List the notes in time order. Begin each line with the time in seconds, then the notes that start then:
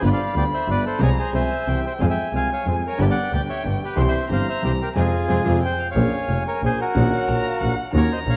0.01 G1 G2 D3 G3 B3 F4 B5
0.06 B4 D5
0.13 D5 F5
0.34 D2 D3 G3 B3 F4 D5 G5
0.54 C5 E5
0.66 G1 G2 D3 G3 B3 F4 B4
0.71 D5
0.86 A4 C5
0.99 C2 C3 F3 G#3 C4 F4 G#4 A#5
1.04 C#5
1.19 G#4 C5
1.33 C2 C3 F3 G#3 C4 F4 G#4 C5 E5 G#5
1.67 C2 C3 E3 G3 C4 E4 G4 G5
1.86 C5 E5
1.99 F2 F3 G#3 C4 F4 G#4 C5 G#5
2.03 F5
2.10 E5 G5
2.32 C2 C3 F3 G#3 C4 F4 G#4 F5
2.37 G#5
2.53 C#5 F5
2.65 F2 F3 G#3 C4 F4 G#4
2.87 A#4 C#5
2.98 G1 G2 D3 G3 B3 D4 G4 B4 G5
3.02 D5
3.10 D5 F#5
3.31 D2 D3 G3 B3 D4 G4 D5
3.35 G5
3.49 C#5 E5
3.64 G1 G2 D3 G3 B3 D4 G4
3.84 G4 B4
3.96 C2 C3 E3 G3 C4 E4 G4 C5 C6
4.08 C5 E5
4.29 G1 G2 E3 G3 C4 E4 G4 C5 F5 A#5
4.49 C5 E5
4.62 C2 C3 E3 G3 C4 E4 G4 C5
4.82 G4 A#4
4.95 F2 C3 F3 G#3 C4 F4 G#4 G#5
5.00 G#4
5.28 F2 C3 F3 G#3 C4 F4 G#4
5.45 F2 C3 F3 G#3 C4 F4 G#4
5.62 C5 G5
5.80 F5
5.91 C#5 F5 G#5
5.95 A#1 A#2 F3 A#3 C#4 G#4
6.28 F1 F2
6.47 A#4 C#5
6.62 A#1 A#2 G#4 C5
6.81 F#4 A#4
6.94 A#1 A#2 D#3 A#3 C#4 F#4 F#5
7.12 C#5
7.28 A#1 A#2 A#5
7.45 F5
7.60 A#1 A#2 F#5
7.92 D#2 D#3 A#3 C#4 F#4 A#5
7.97 A#4 C#5
8.12 C5 D#5
8.26 A#1 A#2 C#5
8.30 F5